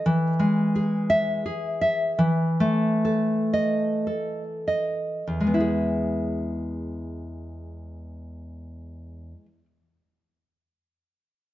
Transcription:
0.06 2.14 E3 medium
0.39 1.44 G#3 soft
0.75 1.44 G#4 soft
1.10 1.66 E5 medium
1.46 2.19 G#4 soft
1.81 2.19 E5 medium
2.19 5.22 E3 medium
2.60 4.07 A3 medium
3.05 4.06 A4 soft
3.53 4.43 D#5 medium
4.07 5.26 A4 soft
4.68 5.26 D#5 soft
5.27 9.32 E2 soft
5.41 9.45 G#3 soft
5.47 9.52 B3 soft
5.54 9.59 E4 soft
5.60 9.65 G#4 soft

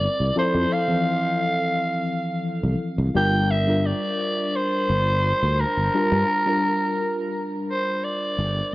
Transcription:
0.00 0.32 G3 medium
0.00 0.32 C4 medium
0.00 0.33 E4 medium
0.00 0.33 A#4 medium
0.00 0.37 D5 loud
0.20 0.30 C2 medium
0.35 0.84 F3 medium
0.35 0.85 C4 medium
0.35 0.85 E4 medium
0.35 0.85 A4 loud
0.35 0.75 C5 loud
0.55 0.65 F2 medium
0.73 2.81 F5 loud
0.88 3.12 E3 medium
0.88 3.11 F3 medium
0.88 3.11 C4 medium
0.88 3.12 A4 medium
2.63 2.74 C2 medium
2.98 3.09 C2 loud
3.15 3.92 G1 loud
3.15 3.64 G3 medium
3.15 3.64 D4 medium
3.15 3.64 F4 medium
3.15 3.64 A#4 loud
3.15 3.53 G5 loud
3.51 3.88 E5 loud
3.67 5.90 G3 medium
3.67 5.90 D4 medium
3.67 5.91 F4 medium
3.67 5.91 A#4 medium
3.86 4.57 D5 loud
4.56 5.62 C5 loud
4.90 5.31 G1 medium
5.43 5.64 D2 medium
5.61 7.43 A#4 loud
5.77 5.88 G1 medium
5.94 6.43 G3 medium
5.94 6.43 D4 medium
5.94 6.43 F4 medium
5.94 6.44 A#4 loud
6.12 6.23 G2 loud
6.46 8.69 G3 medium
6.46 8.69 D4 medium
6.46 8.70 F4 medium
6.46 8.70 A#4 medium
7.70 8.06 C5 loud
8.04 8.75 D5 loud
8.38 8.60 G1 loud

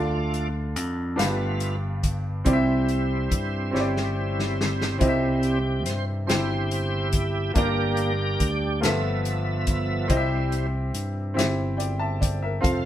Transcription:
0.00 0.76 D2 medium
0.00 1.14 D3 medium
0.00 0.48 A3 soft
0.00 0.48 D4 soft
0.00 0.95 D4 medium
0.00 0.48 F4 medium
0.00 0.96 F4 medium
0.00 0.96 A4 medium
0.00 0.96 F5 medium
0.34 closed hi-hat soft
0.76 1.15 F2 medium
0.76 closed hi-hat medium
1.16 2.42 G1 medium
1.16 2.41 G2 medium
1.16 1.75 A3 soft
1.16 1.76 B3 soft
1.16 2.23 D4 medium
1.16 2.23 G4 medium
1.16 2.24 B4 medium
1.16 2.24 F5 medium
1.16 snare medium
1.16 closed hi-hat medium
1.20 1.76 F4 soft
1.60 closed hi-hat soft
2.03 kick medium
2.03 closed hi-hat medium
2.44 3.27 C2 medium
2.44 3.69 C3 medium
2.44 4.97 G3 soft
2.44 3.51 C4 medium
2.44 4.97 C4 soft
2.44 3.51 E4 medium
2.44 4.98 E4 soft
2.44 3.51 G4 medium
2.44 2.53 D5 medium
2.44 kick medium
2.44 closed hi-hat medium
2.53 3.55 E5 medium
2.88 closed hi-hat soft
3.31 3.70 G2 medium
3.31 kick medium
3.31 closed hi-hat medium
3.71 4.97 G1 medium
3.71 4.78 C4 medium
3.71 4.78 E4 medium
3.71 4.79 G4 medium
3.71 3.80 C#5 medium
3.75 snare soft
3.80 4.82 D5 medium
3.97 snare soft
4.39 snare medium
4.61 snare medium
4.81 snare medium
4.99 5.87 C2 medium
4.99 6.24 C3 medium
4.99 5.58 G3 soft
4.99 6.05 C4 medium
4.99 6.06 E4 medium
4.99 6.06 G4 medium
4.99 5.08 D#5 medium
4.99 kick medium
4.99 closed hi-hat medium
5.03 5.59 C4 soft
5.03 5.59 E4 medium
5.08 6.10 E5 medium
5.43 5.84 G4 medium
5.43 closed hi-hat soft
5.86 6.30 G2 medium
5.86 6.05 C5 medium
5.86 snare soft
5.86 closed hi-hat medium
6.27 7.52 G1 medium
6.27 7.33 C4 medium
6.27 6.34 D4 soft
6.27 7.52 E4 medium
6.27 7.33 G4 soft
6.27 7.52 G4 medium
6.27 7.09 C5 medium
6.27 7.34 G5 medium
6.27 snare medium
6.27 closed hi-hat medium
6.34 7.36 E4 soft
6.71 closed hi-hat soft
7.12 kick medium
7.12 closed hi-hat medium
7.54 8.36 G1 medium
7.54 8.79 G2 soft
7.54 8.12 G3 soft
7.54 8.60 A#3 medium
7.54 8.13 A#3 soft
7.54 8.61 D4 medium
7.54 8.61 G4 medium
7.54 8.61 D5 medium
7.54 kick medium
7.54 closed hi-hat medium
7.58 8.80 D4 medium
7.58 8.80 G4 medium
7.58 8.48 A#4 medium
7.97 closed hi-hat soft
8.40 8.85 D2 medium
8.40 kick medium
8.40 closed hi-hat medium
8.80 10.06 G1 medium
8.80 10.06 G2 medium
8.80 10.06 F3 soft
8.80 8.88 A#3 medium
8.80 9.87 F4 medium
8.80 9.88 A4 medium
8.80 9.88 E5 medium
8.80 snare medium
8.80 closed hi-hat medium
8.85 10.07 A3 soft
8.85 10.07 B3 soft
8.85 9.90 B3 medium
8.85 10.07 E5 soft
9.25 closed hi-hat soft
9.67 kick medium
9.67 closed hi-hat medium
10.08 10.91 C2 medium
10.08 11.33 C3 medium
10.08 10.66 G3 soft
10.08 11.14 C4 medium
10.08 10.67 C4 soft
10.08 11.15 E4 medium
10.08 10.67 E4 medium
10.08 11.15 G4 medium
10.08 10.17 D#5 medium
10.08 kick medium
10.08 closed hi-hat medium
10.17 11.19 E5 medium
10.52 closed hi-hat soft
10.94 11.34 G2 medium
10.94 closed hi-hat medium
11.34 12.60 G1 medium
11.34 12.41 C4 medium
11.34 12.41 E4 medium
11.34 12.41 G4 medium
11.34 11.79 E5 medium
11.39 snare medium
11.39 closed hi-hat medium
11.77 11.99 D5 soft
11.77 11.98 G5 medium
11.77 closed hi-hat soft
11.99 12.21 E5 medium
11.99 12.20 A5 medium
12.20 12.42 D5 soft
12.20 12.41 G5 soft
12.20 kick medium
12.20 closed hi-hat medium
12.42 12.84 A#4 soft
12.42 12.83 E5 medium
12.61 12.85 F1 medium
12.61 12.85 A3 soft
12.61 12.85 C4 medium
12.61 12.85 C4 soft
12.61 12.85 F4 medium
12.61 12.85 F4 soft
12.61 12.85 A4 medium
12.61 12.85 F5 medium
12.61 kick loud
12.61 closed hi-hat medium

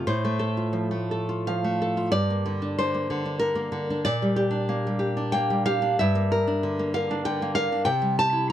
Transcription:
0.07 2.11 A2 medium
0.07 1.43 C5 loud
0.25 0.90 A3 medium
0.39 1.10 A4 medium
0.57 1.28 F4 soft
0.73 1.46 F3 soft
0.91 1.63 A3 medium
1.11 1.80 A4 medium
1.29 1.96 F4 medium
1.47 2.12 F3 medium
1.47 2.12 F5 loud
1.64 2.15 A3 medium
1.82 2.15 A4 medium
1.97 2.14 F4 medium
2.12 4.03 G2 medium
2.12 2.76 D5 loud
2.30 2.93 A#3 medium
2.46 2.78 D3 medium
2.62 3.24 D4 medium
2.79 3.09 D3 medium
2.79 3.39 C5 loud
2.94 3.54 A#3 medium
3.10 3.40 D3 medium
3.25 3.89 D4 medium
3.39 3.71 D3 medium
3.39 4.03 A#4 loud
3.55 4.06 A#3 medium
3.72 4.06 D3 medium
3.90 4.07 D4 medium
4.05 5.95 A#2 medium
4.05 5.30 D5 loud
4.22 4.85 G3 medium
4.36 4.98 G4 medium
4.51 5.16 D4 medium
4.69 5.33 A#3 medium
4.87 5.49 G3 medium
4.99 5.65 G4 medium
5.17 5.81 D4 medium
5.32 5.99 A#3 medium
5.32 5.65 G5 loud
5.50 5.99 G3 medium
5.66 5.99 G4 medium
5.66 5.98 F5 loud
5.82 5.99 D4 medium
5.99 7.85 G2 loud
5.99 6.90 E5 loud
6.15 6.78 A#3 medium
6.32 6.94 A#4 medium
6.47 6.96 D4 medium
6.63 7.24 D3 medium
6.79 7.41 A#3 medium
6.94 7.55 A#4 medium
6.94 7.24 F5 loud
7.11 7.42 D4 medium
7.25 7.72 D3 medium
7.25 7.55 G5 loud
7.42 7.89 A#3 medium
7.55 7.88 A#4 medium
7.55 7.85 F5 loud
7.72 7.88 D4 medium
7.85 8.52 C3 medium
7.85 8.17 G5 loud
8.02 8.52 G3 medium
8.19 8.52 G4 medium
8.19 8.49 A5 loud
8.33 8.52 E4 medium

